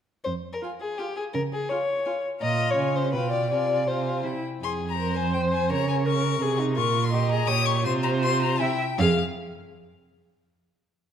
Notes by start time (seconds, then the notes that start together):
0.24 F2 C5
0.53 A#4
0.62 F4 G#5
0.80 G#4
0.98 F4 G4 G#5
1.17 G#4
1.34 C#3 A#4
1.53 G#4
1.69 F4 C#5 G#5
2.05 F4 G#5
2.41 A#2 F4 D#5 A#5
2.71 C#5
2.77 C#3 G#5
2.96 C5
3.13 B2 F4 B4 G5
3.31 D5
3.50 C3 F4 D5 G#5
3.88 F4 C5 G#5
4.24 C3 E4 G5
4.62 F2 G#4 C6
4.90 A#5
4.97 A#4 C5
5.16 C5 G#5
5.33 C5 G5
5.52 G#5
5.70 C#3 A#4 C#5 A#5
5.89 G#5
6.06 A#4 C#6
6.41 C3 G#4
6.60 D#4
6.77 A#2 F4 A#4 C#6
7.04 C6
7.12 G4 D#5
7.31 G#4 A#5
7.48 A#2 G4 C#5 D#6
7.66 C#6
7.85 C3 F4 C5 C6
8.03 A#5
8.24 C6
8.42 A#5
8.60 C3 E4 E5 G5
8.98 F2 G#4 F5